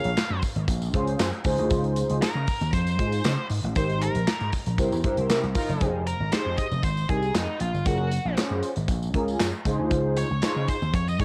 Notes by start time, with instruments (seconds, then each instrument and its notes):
Already playing: analog polysynth C#4 F4 G#4 A#4, lead electric guitar F5
0.04 slap bass A#1, closed hi-hat
0.17 muted slap bass stroke, snare, clap, tambourine
0.30 slap bass F#2
0.42 kick, open hi-hat, tambourine
0.56 slap bass G#1, closed hi-hat
0.68 slap bass A#1, kick, closed hi-hat, tambourine
0.82 closed hi-hat, tambourine
0.93 slap bass C#2, analog polysynth C#4 F4 G#4 C5, kick, closed hi-hat
1.07 closed hi-hat
1.19 slap bass F#2, snare, clap, tambourine
1.33 closed hi-hat
1.44 slap bass C#2, analog polysynth D#4 F4 G#4 C5, kick, open hi-hat, tambourine
1.58 slap bass D2, closed hi-hat
1.70 slap bass C#2, kick, closed hi-hat, tambourine
1.84 closed hi-hat
1.96 closed hi-hat, tambourine
2.10 slap bass C#2, closed hi-hat
2.22 lead electric guitar A#4, snare, clap, tambourine
2.35 slap bass C#3
2.47 kick, open hi-hat, tambourine
2.61 slap bass D#2, closed hi-hat, tambourine
2.73 slap bass F2, lead electric guitar C5, kick, closed hi-hat, tambourine
2.87 closed hi-hat, tambourine
2.99 slap bass G#2, analog polysynth D#4 F4 G#4 C5, kick, closed hi-hat
3.12 closed hi-hat, tambourine
3.24 slap bass C#3, snare, clap, tambourine
3.50 slap bass G#2, open hi-hat, tambourine
3.64 slap bass A1, closed hi-hat
3.75 slap bass G#1, analog polysynth D#4 G4 A#4 C5, lead electric guitar C5, kick, closed hi-hat, tambourine
3.90 closed hi-hat
4.01 lead electric guitar A#4, closed hi-hat, tambourine
4.15 slap bass A#1, closed hi-hat
4.27 muted slap bass stroke, snare, clap, tambourine
4.40 slap bass G#2, closed hi-hat
4.52 kick, open hi-hat, tambourine
4.66 slap bass A#1, closed hi-hat, tambourine
4.78 slap bass C2, analog polysynth E4 G4 A#4 C5, kick, closed hi-hat, tambourine
4.92 slap bass E2, tambourine
5.04 slap bass G2, analog polysynth E4 G4 A#4 C5, kick, closed hi-hat
5.17 slap bass C2, closed hi-hat
5.29 slap bass C3, analog polysynth E4 G4 A#4, snare, clap, tambourine
5.43 slap bass C2, closed hi-hat
5.55 analog polysynth D#4 F4 A#4, kick, open hi-hat, tambourine
5.69 slap bass F#1, closed hi-hat, tambourine
5.80 slap bass F1, analog polysynth D#4 G4 G#4 C5, kick, closed hi-hat, tambourine
6.07 lead electric guitar A#4, closed hi-hat, tambourine
6.20 slap bass G#1
6.32 analog polysynth D#4 G4 G#4 C5, lead electric guitar C5, muted slap bass stroke, snare, clap, closed hi-hat, tambourine
6.46 slap bass F2
6.57 lead electric guitar D#5, kick, closed hi-hat, tambourine
6.71 slap bass F1, tambourine
6.83 slap bass G#1, lead electric guitar C5, kick, closed hi-hat, tambourine
6.97 tambourine
7.09 slap bass C2, analog polysynth D#4 G4 G#4 A#4, lead electric guitar G#4, kick, closed hi-hat
7.22 tambourine
7.35 slap bass F2, lead electric guitar D#4, snare, clap, closed hi-hat, tambourine
7.60 slap bass A#1, lead electric guitar F4, closed hi-hat, tambourine
7.74 slap bass G1, tambourine
7.86 slap bass F#1, analog polysynth C#4 F4 G#4 A#4, lead electric guitar F#4, kick, closed hi-hat, tambourine
8.12 closed hi-hat, tambourine
8.25 slap bass A#1
8.37 analog polysynth C#4 F4 G#4 C5, muted slap bass stroke, snare, clap, closed hi-hat, tambourine
8.51 slap bass F#2
8.63 closed hi-hat, tambourine
8.76 slap bass G#1, closed hi-hat, tambourine
8.88 slap bass A#1, kick, closed hi-hat, tambourine
9.03 tambourine
9.14 slap bass C#2, analog polysynth C#4 F4 G#4 A#4, kick, closed hi-hat
9.28 tambourine
9.40 slap bass F#2, snare, clap, closed hi-hat, tambourine
9.65 slap bass C#2, analog polysynth D#4 F4 G#4 C5, kick, closed hi-hat, tambourine
9.79 slap bass D2
9.91 slap bass C#2, kick, closed hi-hat, tambourine
10.17 lead electric guitar C#5, closed hi-hat, tambourine
10.31 slap bass C#2
10.42 analog polysynth D#4 F4 G#4 C5, muted slap bass stroke, snare, clap, closed hi-hat, tambourine
10.56 slap bass C#3
10.68 lead electric guitar C5, kick, closed hi-hat, tambourine
10.82 slap bass D#2, tambourine
10.94 slap bass F2, lead electric guitar C#5, kick, closed hi-hat, tambourine
11.08 lead electric guitar D#5, tambourine
11.19 slap bass G#2, analog polysynth D#4 F4 G#4 D#5, lead electric guitar C#5, kick, closed hi-hat